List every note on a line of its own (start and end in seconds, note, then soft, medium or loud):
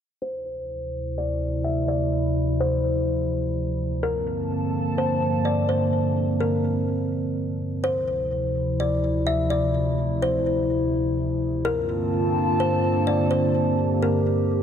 0.22 3.99 D2 medium
0.22 3.99 C3 medium
0.22 7.79 F3 medium
0.22 3.99 E4 medium
0.22 1.13 C5 medium
1.18 1.62 D5 medium
1.64 1.87 E5 medium
1.88 2.11 D5 medium
2.60 3.05 C5 medium
4.03 7.80 G2 medium
4.03 7.80 D3 medium
4.03 7.80 A#3 medium
4.03 7.80 C4 medium
4.03 4.94 A#4 medium
4.03 7.80 A5 medium
4.98 5.43 C5 medium
5.45 5.68 D5 medium
5.69 5.92 C5 medium
6.40 6.85 A#4 medium
7.83 11.61 D2 medium
7.83 11.61 C3 medium
7.83 11.61 F3 medium
7.83 11.61 E4 medium
7.83 8.75 C5 medium
8.80 9.24 D5 medium
9.27 9.49 E5 medium
9.50 9.73 D5 medium
10.22 10.67 C5 medium
11.64 14.63 G2 medium
11.64 14.63 D3 medium
11.64 14.63 A#3 medium
11.64 14.63 C4 medium
11.64 13.53 F4 medium
11.64 12.56 A#4 loud
11.64 14.63 A5 medium
12.60 13.05 C5 medium
13.07 13.30 D5 medium
13.31 13.53 C5 medium
13.55 14.63 G4 medium
14.03 14.47 A#4 medium